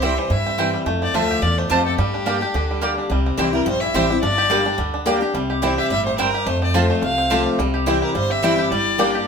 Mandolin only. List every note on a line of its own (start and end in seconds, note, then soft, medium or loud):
0.02 0.12 C4 medium
0.02 0.12 E4 medium
0.02 0.12 C5 loud
0.02 0.13 G5 medium
0.58 0.68 C4 medium
0.58 0.68 E4 medium
0.58 0.68 C5 medium
0.58 0.69 G5 loud
1.14 1.24 C4 medium
1.14 1.24 F4 medium
1.14 1.24 C5 medium
1.14 1.25 A5 medium
1.70 1.80 C4 medium
1.70 1.81 F4 loud
1.70 1.81 C5 medium
1.70 1.81 A5 loud
2.26 2.36 A#3 medium
2.26 2.36 G4 medium
2.26 2.36 D5 medium
2.26 2.37 G5 medium
2.82 2.92 A#3 medium
2.82 2.92 G4 medium
2.82 2.92 D5 medium
2.82 2.92 G5 medium
3.38 3.48 C4 medium
3.38 3.48 E4 medium
3.38 3.49 C5 medium
3.38 3.49 G5 medium
3.94 4.04 C4 medium
3.94 4.04 E4 medium
3.94 4.05 C5 loud
3.94 4.05 G5 loud
4.50 4.60 A#3 medium
4.50 4.60 G4 medium
4.50 4.61 D5 medium
4.50 4.61 G5 medium
5.06 5.16 A#3 medium
5.06 5.17 G4 medium
5.06 5.17 D5 medium
5.06 5.17 G5 loud
5.62 5.72 C4 medium
5.62 5.73 E4 loud
5.62 5.73 C5 medium
5.62 5.73 G5 medium
6.18 6.28 C4 medium
6.18 6.29 E4 medium
6.18 6.29 C5 loud
6.18 6.29 G5 loud
6.74 6.84 C4 medium
6.74 6.84 F4 loud
6.74 6.85 C5 medium
6.74 6.85 A5 medium
7.30 7.40 C4 loud
7.30 7.41 F4 medium
7.30 7.41 C5 loud
7.30 7.41 A5 loud
7.87 7.97 C4 medium
7.87 7.97 E4 medium
7.87 7.97 C5 medium
7.87 7.97 G5 loud
8.43 8.53 C4 loud
8.43 8.53 E4 medium
8.43 8.53 C5 medium
8.43 8.53 G5 loud
8.99 9.09 A#3 loud
8.99 9.09 G4 medium
8.99 9.09 D5 medium
8.99 9.09 G5 loud